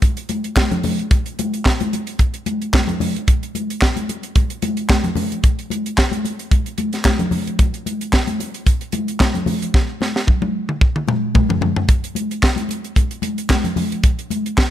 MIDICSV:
0, 0, Header, 1, 2, 480
1, 0, Start_track
1, 0, Tempo, 539084
1, 988, Time_signature, 4, 2, 24, 8
1, 13092, End_track
2, 0, Start_track
2, 0, Title_t, "Drums"
2, 18, Note_on_c, 9, 42, 79
2, 20, Note_on_c, 9, 36, 104
2, 31, Note_on_c, 9, 62, 34
2, 107, Note_off_c, 9, 42, 0
2, 109, Note_off_c, 9, 36, 0
2, 120, Note_off_c, 9, 62, 0
2, 150, Note_on_c, 9, 42, 54
2, 239, Note_off_c, 9, 42, 0
2, 257, Note_on_c, 9, 42, 70
2, 263, Note_on_c, 9, 62, 31
2, 263, Note_on_c, 9, 63, 57
2, 346, Note_off_c, 9, 42, 0
2, 352, Note_off_c, 9, 62, 0
2, 352, Note_off_c, 9, 63, 0
2, 393, Note_on_c, 9, 42, 49
2, 483, Note_off_c, 9, 42, 0
2, 503, Note_on_c, 9, 36, 118
2, 503, Note_on_c, 9, 39, 94
2, 508, Note_on_c, 9, 63, 71
2, 510, Note_on_c, 9, 38, 114
2, 592, Note_off_c, 9, 36, 0
2, 592, Note_off_c, 9, 39, 0
2, 597, Note_off_c, 9, 63, 0
2, 600, Note_off_c, 9, 38, 0
2, 635, Note_on_c, 9, 42, 39
2, 636, Note_on_c, 9, 64, 77
2, 724, Note_off_c, 9, 42, 0
2, 725, Note_off_c, 9, 64, 0
2, 743, Note_on_c, 9, 46, 60
2, 748, Note_on_c, 9, 62, 30
2, 748, Note_on_c, 9, 63, 71
2, 748, Note_on_c, 9, 64, 66
2, 832, Note_off_c, 9, 46, 0
2, 837, Note_off_c, 9, 62, 0
2, 837, Note_off_c, 9, 63, 0
2, 837, Note_off_c, 9, 64, 0
2, 883, Note_on_c, 9, 42, 43
2, 972, Note_off_c, 9, 42, 0
2, 987, Note_on_c, 9, 42, 83
2, 989, Note_on_c, 9, 36, 127
2, 1003, Note_on_c, 9, 62, 35
2, 1076, Note_off_c, 9, 42, 0
2, 1078, Note_off_c, 9, 36, 0
2, 1092, Note_off_c, 9, 62, 0
2, 1120, Note_on_c, 9, 42, 48
2, 1209, Note_off_c, 9, 42, 0
2, 1235, Note_on_c, 9, 42, 65
2, 1240, Note_on_c, 9, 62, 38
2, 1240, Note_on_c, 9, 63, 57
2, 1324, Note_off_c, 9, 42, 0
2, 1329, Note_off_c, 9, 62, 0
2, 1329, Note_off_c, 9, 63, 0
2, 1368, Note_on_c, 9, 42, 46
2, 1457, Note_off_c, 9, 42, 0
2, 1470, Note_on_c, 9, 39, 71
2, 1474, Note_on_c, 9, 36, 105
2, 1478, Note_on_c, 9, 38, 103
2, 1560, Note_off_c, 9, 39, 0
2, 1563, Note_off_c, 9, 36, 0
2, 1567, Note_off_c, 9, 38, 0
2, 1605, Note_on_c, 9, 42, 46
2, 1610, Note_on_c, 9, 63, 72
2, 1694, Note_off_c, 9, 42, 0
2, 1699, Note_off_c, 9, 63, 0
2, 1719, Note_on_c, 9, 42, 61
2, 1724, Note_on_c, 9, 62, 37
2, 1808, Note_off_c, 9, 42, 0
2, 1813, Note_off_c, 9, 62, 0
2, 1843, Note_on_c, 9, 42, 53
2, 1932, Note_off_c, 9, 42, 0
2, 1951, Note_on_c, 9, 42, 83
2, 1953, Note_on_c, 9, 36, 103
2, 2040, Note_off_c, 9, 42, 0
2, 2042, Note_off_c, 9, 36, 0
2, 2081, Note_on_c, 9, 42, 56
2, 2170, Note_off_c, 9, 42, 0
2, 2192, Note_on_c, 9, 42, 72
2, 2192, Note_on_c, 9, 62, 29
2, 2192, Note_on_c, 9, 63, 60
2, 2281, Note_off_c, 9, 42, 0
2, 2281, Note_off_c, 9, 62, 0
2, 2281, Note_off_c, 9, 63, 0
2, 2329, Note_on_c, 9, 42, 46
2, 2418, Note_off_c, 9, 42, 0
2, 2435, Note_on_c, 9, 63, 68
2, 2436, Note_on_c, 9, 36, 123
2, 2438, Note_on_c, 9, 39, 92
2, 2445, Note_on_c, 9, 38, 117
2, 2524, Note_off_c, 9, 63, 0
2, 2525, Note_off_c, 9, 36, 0
2, 2527, Note_off_c, 9, 39, 0
2, 2534, Note_off_c, 9, 38, 0
2, 2560, Note_on_c, 9, 64, 73
2, 2570, Note_on_c, 9, 42, 40
2, 2649, Note_off_c, 9, 64, 0
2, 2659, Note_off_c, 9, 42, 0
2, 2674, Note_on_c, 9, 63, 69
2, 2674, Note_on_c, 9, 64, 69
2, 2680, Note_on_c, 9, 46, 57
2, 2763, Note_off_c, 9, 63, 0
2, 2763, Note_off_c, 9, 64, 0
2, 2769, Note_off_c, 9, 46, 0
2, 2816, Note_on_c, 9, 42, 49
2, 2905, Note_off_c, 9, 42, 0
2, 2918, Note_on_c, 9, 42, 87
2, 2919, Note_on_c, 9, 36, 124
2, 3007, Note_off_c, 9, 42, 0
2, 3008, Note_off_c, 9, 36, 0
2, 3053, Note_on_c, 9, 42, 47
2, 3142, Note_off_c, 9, 42, 0
2, 3160, Note_on_c, 9, 63, 54
2, 3163, Note_on_c, 9, 42, 60
2, 3249, Note_off_c, 9, 63, 0
2, 3252, Note_off_c, 9, 42, 0
2, 3297, Note_on_c, 9, 42, 50
2, 3386, Note_off_c, 9, 42, 0
2, 3396, Note_on_c, 9, 39, 78
2, 3402, Note_on_c, 9, 36, 109
2, 3403, Note_on_c, 9, 38, 98
2, 3485, Note_off_c, 9, 39, 0
2, 3491, Note_off_c, 9, 36, 0
2, 3492, Note_off_c, 9, 38, 0
2, 3529, Note_on_c, 9, 63, 56
2, 3531, Note_on_c, 9, 42, 44
2, 3618, Note_off_c, 9, 63, 0
2, 3620, Note_off_c, 9, 42, 0
2, 3644, Note_on_c, 9, 42, 59
2, 3645, Note_on_c, 9, 62, 37
2, 3733, Note_off_c, 9, 42, 0
2, 3734, Note_off_c, 9, 62, 0
2, 3769, Note_on_c, 9, 42, 50
2, 3858, Note_off_c, 9, 42, 0
2, 3878, Note_on_c, 9, 42, 86
2, 3880, Note_on_c, 9, 36, 118
2, 3888, Note_on_c, 9, 62, 33
2, 3967, Note_off_c, 9, 42, 0
2, 3969, Note_off_c, 9, 36, 0
2, 3977, Note_off_c, 9, 62, 0
2, 4008, Note_on_c, 9, 42, 54
2, 4097, Note_off_c, 9, 42, 0
2, 4116, Note_on_c, 9, 42, 73
2, 4120, Note_on_c, 9, 62, 30
2, 4120, Note_on_c, 9, 63, 71
2, 4205, Note_off_c, 9, 42, 0
2, 4209, Note_off_c, 9, 62, 0
2, 4209, Note_off_c, 9, 63, 0
2, 4247, Note_on_c, 9, 42, 48
2, 4336, Note_off_c, 9, 42, 0
2, 4357, Note_on_c, 9, 39, 84
2, 4359, Note_on_c, 9, 36, 119
2, 4360, Note_on_c, 9, 63, 68
2, 4364, Note_on_c, 9, 38, 112
2, 4446, Note_off_c, 9, 39, 0
2, 4448, Note_off_c, 9, 36, 0
2, 4449, Note_off_c, 9, 63, 0
2, 4454, Note_off_c, 9, 38, 0
2, 4486, Note_on_c, 9, 64, 73
2, 4489, Note_on_c, 9, 42, 39
2, 4575, Note_off_c, 9, 64, 0
2, 4578, Note_off_c, 9, 42, 0
2, 4590, Note_on_c, 9, 62, 31
2, 4590, Note_on_c, 9, 63, 70
2, 4590, Note_on_c, 9, 64, 73
2, 4598, Note_on_c, 9, 46, 53
2, 4679, Note_off_c, 9, 62, 0
2, 4679, Note_off_c, 9, 63, 0
2, 4679, Note_off_c, 9, 64, 0
2, 4687, Note_off_c, 9, 46, 0
2, 4735, Note_on_c, 9, 42, 52
2, 4825, Note_off_c, 9, 42, 0
2, 4840, Note_on_c, 9, 42, 87
2, 4842, Note_on_c, 9, 36, 122
2, 4929, Note_off_c, 9, 42, 0
2, 4931, Note_off_c, 9, 36, 0
2, 4975, Note_on_c, 9, 42, 47
2, 5064, Note_off_c, 9, 42, 0
2, 5078, Note_on_c, 9, 63, 58
2, 5087, Note_on_c, 9, 42, 71
2, 5167, Note_off_c, 9, 63, 0
2, 5176, Note_off_c, 9, 42, 0
2, 5217, Note_on_c, 9, 42, 51
2, 5306, Note_off_c, 9, 42, 0
2, 5322, Note_on_c, 9, 39, 81
2, 5324, Note_on_c, 9, 36, 100
2, 5330, Note_on_c, 9, 38, 104
2, 5411, Note_off_c, 9, 39, 0
2, 5413, Note_off_c, 9, 36, 0
2, 5419, Note_off_c, 9, 38, 0
2, 5445, Note_on_c, 9, 63, 60
2, 5456, Note_on_c, 9, 42, 45
2, 5534, Note_off_c, 9, 63, 0
2, 5545, Note_off_c, 9, 42, 0
2, 5562, Note_on_c, 9, 62, 37
2, 5568, Note_on_c, 9, 42, 60
2, 5651, Note_off_c, 9, 62, 0
2, 5657, Note_off_c, 9, 42, 0
2, 5693, Note_on_c, 9, 42, 47
2, 5782, Note_off_c, 9, 42, 0
2, 5800, Note_on_c, 9, 36, 115
2, 5802, Note_on_c, 9, 42, 77
2, 5812, Note_on_c, 9, 62, 37
2, 5889, Note_off_c, 9, 36, 0
2, 5891, Note_off_c, 9, 42, 0
2, 5901, Note_off_c, 9, 62, 0
2, 5930, Note_on_c, 9, 42, 48
2, 6019, Note_off_c, 9, 42, 0
2, 6034, Note_on_c, 9, 42, 77
2, 6039, Note_on_c, 9, 62, 29
2, 6039, Note_on_c, 9, 63, 61
2, 6123, Note_off_c, 9, 42, 0
2, 6128, Note_off_c, 9, 62, 0
2, 6128, Note_off_c, 9, 63, 0
2, 6168, Note_on_c, 9, 42, 46
2, 6177, Note_on_c, 9, 38, 32
2, 6257, Note_off_c, 9, 42, 0
2, 6266, Note_off_c, 9, 38, 0
2, 6274, Note_on_c, 9, 39, 102
2, 6277, Note_on_c, 9, 62, 32
2, 6277, Note_on_c, 9, 63, 66
2, 6278, Note_on_c, 9, 36, 114
2, 6281, Note_on_c, 9, 38, 123
2, 6363, Note_off_c, 9, 39, 0
2, 6366, Note_off_c, 9, 62, 0
2, 6366, Note_off_c, 9, 63, 0
2, 6367, Note_off_c, 9, 36, 0
2, 6370, Note_off_c, 9, 38, 0
2, 6404, Note_on_c, 9, 64, 69
2, 6406, Note_on_c, 9, 42, 37
2, 6493, Note_off_c, 9, 64, 0
2, 6495, Note_off_c, 9, 42, 0
2, 6510, Note_on_c, 9, 63, 72
2, 6510, Note_on_c, 9, 64, 67
2, 6517, Note_on_c, 9, 46, 56
2, 6599, Note_off_c, 9, 63, 0
2, 6599, Note_off_c, 9, 64, 0
2, 6606, Note_off_c, 9, 46, 0
2, 6654, Note_on_c, 9, 42, 49
2, 6743, Note_off_c, 9, 42, 0
2, 6757, Note_on_c, 9, 42, 86
2, 6757, Note_on_c, 9, 62, 37
2, 6759, Note_on_c, 9, 36, 116
2, 6846, Note_off_c, 9, 42, 0
2, 6846, Note_off_c, 9, 62, 0
2, 6848, Note_off_c, 9, 36, 0
2, 6891, Note_on_c, 9, 42, 45
2, 6980, Note_off_c, 9, 42, 0
2, 7000, Note_on_c, 9, 63, 54
2, 7004, Note_on_c, 9, 42, 62
2, 7089, Note_off_c, 9, 63, 0
2, 7093, Note_off_c, 9, 42, 0
2, 7133, Note_on_c, 9, 42, 52
2, 7222, Note_off_c, 9, 42, 0
2, 7231, Note_on_c, 9, 62, 29
2, 7237, Note_on_c, 9, 39, 79
2, 7239, Note_on_c, 9, 36, 92
2, 7244, Note_on_c, 9, 38, 103
2, 7320, Note_off_c, 9, 62, 0
2, 7326, Note_off_c, 9, 39, 0
2, 7329, Note_off_c, 9, 36, 0
2, 7333, Note_off_c, 9, 38, 0
2, 7367, Note_on_c, 9, 63, 67
2, 7368, Note_on_c, 9, 42, 44
2, 7456, Note_off_c, 9, 63, 0
2, 7457, Note_off_c, 9, 42, 0
2, 7478, Note_on_c, 9, 62, 37
2, 7483, Note_on_c, 9, 42, 61
2, 7567, Note_off_c, 9, 62, 0
2, 7572, Note_off_c, 9, 42, 0
2, 7607, Note_on_c, 9, 42, 49
2, 7696, Note_off_c, 9, 42, 0
2, 7716, Note_on_c, 9, 36, 113
2, 7717, Note_on_c, 9, 42, 93
2, 7805, Note_off_c, 9, 36, 0
2, 7806, Note_off_c, 9, 42, 0
2, 7844, Note_on_c, 9, 42, 49
2, 7933, Note_off_c, 9, 42, 0
2, 7946, Note_on_c, 9, 42, 73
2, 7951, Note_on_c, 9, 62, 29
2, 7951, Note_on_c, 9, 63, 62
2, 8035, Note_off_c, 9, 42, 0
2, 8040, Note_off_c, 9, 62, 0
2, 8040, Note_off_c, 9, 63, 0
2, 8087, Note_on_c, 9, 42, 49
2, 8176, Note_off_c, 9, 42, 0
2, 8189, Note_on_c, 9, 63, 63
2, 8192, Note_on_c, 9, 39, 82
2, 8194, Note_on_c, 9, 36, 110
2, 8199, Note_on_c, 9, 38, 117
2, 8278, Note_off_c, 9, 63, 0
2, 8281, Note_off_c, 9, 39, 0
2, 8283, Note_off_c, 9, 36, 0
2, 8288, Note_off_c, 9, 38, 0
2, 8319, Note_on_c, 9, 64, 63
2, 8326, Note_on_c, 9, 42, 39
2, 8408, Note_off_c, 9, 64, 0
2, 8415, Note_off_c, 9, 42, 0
2, 8425, Note_on_c, 9, 62, 28
2, 8425, Note_on_c, 9, 63, 67
2, 8425, Note_on_c, 9, 64, 63
2, 8434, Note_on_c, 9, 46, 55
2, 8514, Note_off_c, 9, 62, 0
2, 8514, Note_off_c, 9, 63, 0
2, 8514, Note_off_c, 9, 64, 0
2, 8523, Note_off_c, 9, 46, 0
2, 8569, Note_on_c, 9, 42, 52
2, 8658, Note_off_c, 9, 42, 0
2, 8674, Note_on_c, 9, 36, 122
2, 8681, Note_on_c, 9, 38, 61
2, 8763, Note_off_c, 9, 36, 0
2, 8770, Note_off_c, 9, 38, 0
2, 8910, Note_on_c, 9, 63, 52
2, 8919, Note_on_c, 9, 38, 62
2, 8999, Note_off_c, 9, 63, 0
2, 9008, Note_off_c, 9, 38, 0
2, 9047, Note_on_c, 9, 38, 59
2, 9136, Note_off_c, 9, 38, 0
2, 9147, Note_on_c, 9, 48, 54
2, 9153, Note_on_c, 9, 36, 104
2, 9236, Note_off_c, 9, 48, 0
2, 9242, Note_off_c, 9, 36, 0
2, 9277, Note_on_c, 9, 48, 61
2, 9277, Note_on_c, 9, 63, 60
2, 9366, Note_off_c, 9, 48, 0
2, 9366, Note_off_c, 9, 63, 0
2, 9517, Note_on_c, 9, 47, 58
2, 9606, Note_off_c, 9, 47, 0
2, 9628, Note_on_c, 9, 36, 122
2, 9717, Note_off_c, 9, 36, 0
2, 9757, Note_on_c, 9, 47, 70
2, 9846, Note_off_c, 9, 47, 0
2, 9862, Note_on_c, 9, 63, 67
2, 9870, Note_on_c, 9, 45, 85
2, 9951, Note_off_c, 9, 63, 0
2, 9959, Note_off_c, 9, 45, 0
2, 10103, Note_on_c, 9, 62, 33
2, 10103, Note_on_c, 9, 63, 71
2, 10107, Note_on_c, 9, 36, 105
2, 10111, Note_on_c, 9, 45, 89
2, 10192, Note_off_c, 9, 62, 0
2, 10192, Note_off_c, 9, 63, 0
2, 10196, Note_off_c, 9, 36, 0
2, 10200, Note_off_c, 9, 45, 0
2, 10232, Note_on_c, 9, 64, 69
2, 10241, Note_on_c, 9, 43, 86
2, 10321, Note_off_c, 9, 64, 0
2, 10330, Note_off_c, 9, 43, 0
2, 10340, Note_on_c, 9, 63, 67
2, 10340, Note_on_c, 9, 64, 63
2, 10346, Note_on_c, 9, 43, 84
2, 10429, Note_off_c, 9, 63, 0
2, 10429, Note_off_c, 9, 64, 0
2, 10435, Note_off_c, 9, 43, 0
2, 10475, Note_on_c, 9, 43, 86
2, 10564, Note_off_c, 9, 43, 0
2, 10582, Note_on_c, 9, 42, 84
2, 10585, Note_on_c, 9, 36, 126
2, 10672, Note_off_c, 9, 42, 0
2, 10674, Note_off_c, 9, 36, 0
2, 10719, Note_on_c, 9, 42, 48
2, 10808, Note_off_c, 9, 42, 0
2, 10820, Note_on_c, 9, 63, 57
2, 10828, Note_on_c, 9, 42, 67
2, 10909, Note_off_c, 9, 63, 0
2, 10917, Note_off_c, 9, 42, 0
2, 10962, Note_on_c, 9, 42, 50
2, 11051, Note_off_c, 9, 42, 0
2, 11067, Note_on_c, 9, 36, 109
2, 11067, Note_on_c, 9, 39, 78
2, 11074, Note_on_c, 9, 38, 102
2, 11156, Note_off_c, 9, 36, 0
2, 11156, Note_off_c, 9, 39, 0
2, 11163, Note_off_c, 9, 38, 0
2, 11184, Note_on_c, 9, 63, 62
2, 11198, Note_on_c, 9, 42, 46
2, 11273, Note_off_c, 9, 63, 0
2, 11287, Note_off_c, 9, 42, 0
2, 11299, Note_on_c, 9, 62, 36
2, 11314, Note_on_c, 9, 42, 61
2, 11388, Note_off_c, 9, 62, 0
2, 11403, Note_off_c, 9, 42, 0
2, 11436, Note_on_c, 9, 42, 43
2, 11526, Note_off_c, 9, 42, 0
2, 11542, Note_on_c, 9, 36, 103
2, 11547, Note_on_c, 9, 62, 33
2, 11548, Note_on_c, 9, 42, 88
2, 11631, Note_off_c, 9, 36, 0
2, 11636, Note_off_c, 9, 62, 0
2, 11637, Note_off_c, 9, 42, 0
2, 11672, Note_on_c, 9, 42, 51
2, 11761, Note_off_c, 9, 42, 0
2, 11772, Note_on_c, 9, 62, 29
2, 11772, Note_on_c, 9, 63, 64
2, 11778, Note_on_c, 9, 42, 74
2, 11861, Note_off_c, 9, 62, 0
2, 11861, Note_off_c, 9, 63, 0
2, 11867, Note_off_c, 9, 42, 0
2, 11913, Note_on_c, 9, 42, 50
2, 12002, Note_off_c, 9, 42, 0
2, 12013, Note_on_c, 9, 63, 68
2, 12018, Note_on_c, 9, 36, 108
2, 12018, Note_on_c, 9, 39, 90
2, 12025, Note_on_c, 9, 38, 119
2, 12102, Note_off_c, 9, 63, 0
2, 12107, Note_off_c, 9, 36, 0
2, 12107, Note_off_c, 9, 39, 0
2, 12114, Note_off_c, 9, 38, 0
2, 12148, Note_on_c, 9, 64, 68
2, 12151, Note_on_c, 9, 42, 41
2, 12237, Note_off_c, 9, 64, 0
2, 12240, Note_off_c, 9, 42, 0
2, 12254, Note_on_c, 9, 63, 65
2, 12254, Note_on_c, 9, 64, 72
2, 12258, Note_on_c, 9, 46, 55
2, 12343, Note_off_c, 9, 63, 0
2, 12343, Note_off_c, 9, 64, 0
2, 12348, Note_off_c, 9, 46, 0
2, 12395, Note_on_c, 9, 42, 54
2, 12484, Note_off_c, 9, 42, 0
2, 12496, Note_on_c, 9, 42, 91
2, 12498, Note_on_c, 9, 36, 123
2, 12585, Note_off_c, 9, 42, 0
2, 12587, Note_off_c, 9, 36, 0
2, 12632, Note_on_c, 9, 42, 49
2, 12721, Note_off_c, 9, 42, 0
2, 12737, Note_on_c, 9, 62, 36
2, 12737, Note_on_c, 9, 63, 57
2, 12743, Note_on_c, 9, 42, 67
2, 12826, Note_off_c, 9, 62, 0
2, 12826, Note_off_c, 9, 63, 0
2, 12832, Note_off_c, 9, 42, 0
2, 12875, Note_on_c, 9, 42, 51
2, 12964, Note_off_c, 9, 42, 0
2, 12979, Note_on_c, 9, 39, 76
2, 12980, Note_on_c, 9, 36, 113
2, 12986, Note_on_c, 9, 38, 100
2, 13068, Note_off_c, 9, 39, 0
2, 13069, Note_off_c, 9, 36, 0
2, 13075, Note_off_c, 9, 38, 0
2, 13092, End_track
0, 0, End_of_file